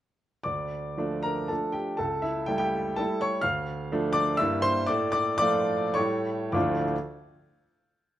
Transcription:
grand piano
0.43 D2 D5 D6
0.97 F3 A3 D4
1.23 A#4 A#5
1.48 F3 A3 D4 A4 A5
1.72 G4 G5
1.97 C#2 A4 A5
2.22 E4 E5
2.46 G3 A3 E4 G5
2.58 G4 G5
2.96 G3 A3 E4 A4 A5
3.21 C#5 C#6
3.41 D2 F5 F6
3.92 F3 A3 D4
4.13 D5 D6
4.37 G2 G3 A#3 E4 E5 E6
4.62 C5 C6
4.87 A2 D5 D6
5.12 D5 D6
5.38 F3 A3 F4 D5 D6
5.94 A2 G3 A3 E4 C#5 C#6
6.52 D2 A2 F3 A3 D4 F4 D6

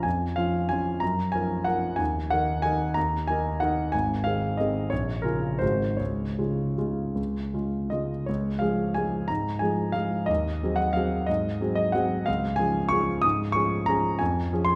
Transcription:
grand piano
0.03 F2 G#5
0.36 F3 C#4 F4 F5
0.69 F3 C#4 F4 G#5
1.00 F#2 A#5
1.32 F3 C#4 A#4 G#5
1.65 F3 C#4 A#4 F#5
1.96 D#2 G#5
2.30 D#3 D#4 A#4 F#5
2.62 D#3 D#4 A#4 G#5
2.94 D#2 A#5
3.27 D#3 D#4 A#4 G#5
3.60 D#3 D#4 A#4 F#5
3.92 G#1 G#5
4.24 D#3 C4 G#4 F5
4.57 D#3 C4 G#4 D#5
4.90 A#1 C#5
5.22 C#3 C#4 F4 A#4
5.59 G#1 D#3 G#3 F#4 C5
5.97 C#2 C#5
6.38 C#3 G#3 F4
6.78 C#3 G#3 F4
7.15 C#2
7.54 C#3 G#3 F4
7.90 C#3 G#3 F4 D#5
8.26 C#2 C#5
8.59 F3 G#3 G#4 F5
8.94 F3 G#3 G#4 G#5
9.28 G#2 A#5
9.59 F3 G#3 G#4 G#5
9.92 F3 G#3 G#4 F5
10.26 D#2 D#5
10.63 F#3 C4 G#4
10.76 F#5
10.93 F#3 C4 G#4 F5
11.26 G#2 D#5
11.61 F#3 C4 G#4
11.75 D#5
11.92 F#3 C4 G#4 F#5
12.26 C#2 F5
12.56 F3 C#4 G#4 G#5
12.89 F3 C#4 G#4 C#6
13.22 G#2 D#6
13.52 F3 C#4 G#4 C#6
13.86 F3 C#4 G#4 A#5
14.19 F2 G#5
14.53 F3 C#4 G#4
14.65 C6

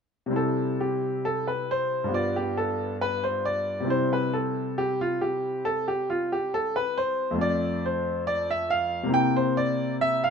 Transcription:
grand piano
0.26 C3 G3
0.31 C4 E4
0.36 A4
0.81 G4
1.25 A4
1.48 B4
1.71 C5
2.04 G2 G3
2.09 B3 F4
2.14 D5
2.36 G4
2.57 A4
3.01 B4
3.24 C5
3.45 D5
3.80 C3 G3
3.85 C4 E4
3.90 C5
4.13 B4
4.33 A4
4.78 G4
5.01 F4
5.21 G4
5.65 A4
5.88 G4
6.10 F4
6.32 G4
6.54 A4
6.76 B4
6.97 C5
7.31 F2 A3
7.36 C4 F4
7.41 D5
7.86 C5
8.27 D5
8.51 E5
8.70 F5
9.03 C3 A#3
9.09 C4 E4
9.14 G5
9.36 C5
9.57 D5
10.01 E5
10.24 F5

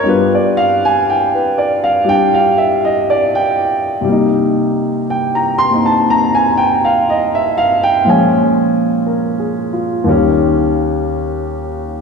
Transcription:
upright piano
0.03 G2 G3 B3
0.08 F4 B4
0.35 D5
0.57 F5
0.85 G#5
1.10 G5
1.35 B4
1.58 D5
1.84 F5
2.04 G3 D4
2.09 G5
2.34 F5
2.58 E5
2.85 D#5
3.10 D5
3.35 G5
4.01 C3 G3
4.08 A#3 D#4
5.10 G5
5.35 A#5
5.58 C6
5.71 A#3 C4 D#4
5.86 A5
6.10 A#5
6.35 G#5
6.57 G5
6.85 F5
7.10 D#5
7.35 E5
7.58 F5
7.83 G5
8.04 A#2 F3 G#3
8.09 C#4 G#5
9.06 A#4
9.39 G#4
9.73 F4
10.04 D#2 D#3 G3
10.09 C#4

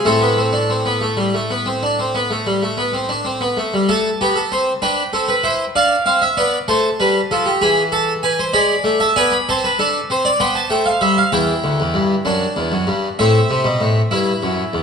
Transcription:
harpsichord
0.05 A2 A3 C4 A4
0.21 B3
0.37 C4
0.53 D4
0.70 C4
0.86 B3
1.01 A3
1.17 G3
1.34 A3
1.51 B3
1.66 C4
1.83 D4
1.99 C4
2.15 B3
2.31 A3
2.47 G3
2.63 A3
2.78 B3
2.93 C4
3.09 D4
3.25 C4
3.41 B3
3.57 A3
3.74 G3
3.89 A3 A4 A5
4.21 B3 G4
4.36 A4
4.52 C4 C5
4.82 D4 B4 G5
5.13 C4 A4
5.29 B4
5.43 E4 C5
5.76 D4 D5 F5
6.06 C4 F5
6.22 E5
6.37 B3 D5
6.68 A3 C5 A5
7.00 G3 B4
7.31 F3 A4
7.46 G4
7.61 E3 G#4 B5
7.92 A4 A5
8.23 B4 G#5
8.39 C5
8.53 G#3 D5 B5
8.84 A3
9.00 E5 A5
9.16 B3 D5 G#5
9.32 B5
9.49 C4 C5 A5
9.64 B4
9.79 D4 A4
10.10 C4 C5
10.25 D5
10.40 B3 C5 G5
10.55 A5
10.70 A3 G5
10.86 F5
11.01 G3 E5
11.18 F5
11.32 E2 E4 G5
11.64 D2
11.80 E2
11.94 G2
12.25 F#2 D4
12.56 E2
12.72 F#2
12.87 G2
13.19 A2 C4 E5
13.50 C3
13.64 B2
13.81 A2
14.11 G2 E4
14.43 F#2
14.73 E2

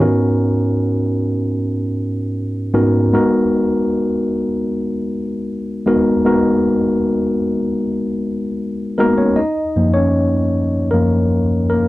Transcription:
tine electric piano
0.00 G#2 B3 C#4 D#4 F#4 A#4
2.74 G#2 B3 C#4 D#4 F#4 A#4
3.13 G#3 B3 D#4 F#4 A#4
5.86 G#3 B3 D#4 F#4 A#4
6.25 G#3 B3 D#4 F#4 A#4
8.98 G#3 A#3 B3 D#4 F#4 A#4
9.18 C#4 C#5
9.36 D#4 D#5
9.76 F#2 F3 A#3
9.94 C#4 C#5
10.91 F#2 F3 A#3 A#4
11.70 A#3 A#4

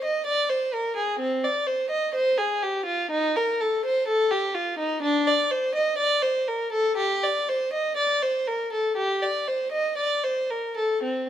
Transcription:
violin
0.04 D#5
0.26 D5
0.49 C5
0.73 A#4
0.96 G#4
1.19 C4
1.43 D5
1.67 C5
1.90 D#5
2.14 C5
2.37 G#4
2.62 G4
2.85 F4
3.11 D#4
3.36 A#4
3.61 A4
3.85 C5
4.07 A4
4.30 G4
4.54 F4
4.78 D#4
5.02 D4
5.27 D5
5.51 C5
5.74 D#5
5.98 D5
6.22 C5
6.47 A#4
6.72 A4
6.97 G4
7.23 D5
7.48 C5
7.73 D#5
7.96 D5
8.22 C5
8.47 A#4
8.72 A4
8.97 G4
9.22 D5
9.47 C5
9.72 D#5
9.97 D5
10.23 C5
10.50 A#4
10.76 A4
11.03 C4

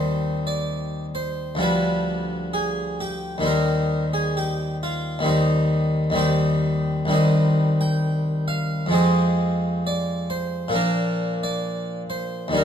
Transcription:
harpsichord
Already playing: D#2 G3 C4 C5
0.47 D5
1.15 C5
1.55 D2 F3 G3
1.60 D4 B4
2.54 G#4
3.00 G4
3.38 D#2 D#3 G3
3.44 C4 A#4
4.13 G#4
4.37 G4
4.83 F4
5.19 D#2 D#3 G3
5.24 C4 D#4
6.10 D#2 D#3 G3
6.15 C4 G4
7.05 C2 D#3 G3
7.11 C4 D#5
7.81 G5
8.48 F5
8.86 F2 F3
8.91 G#3 C4 D#5
9.87 D5
10.30 C5
10.68 A#2 F3 A#3
10.74 D4 A#4
11.43 D5
12.10 C5
12.48 D#2 D#3
12.53 G3 D4
12.57 A#4

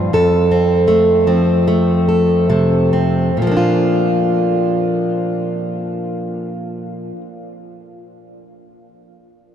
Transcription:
steel-string acoustic guitar
Already playing: G2 A#2 F3 F4
0.13 F2 A4
0.51 C4
0.88 A3
1.27 F3 C4
1.68 A3
2.09 A4
2.50 C3 A3
2.93 C4
3.37 A#2
3.42 F3
3.47 A#3
3.51 D4
3.57 F4

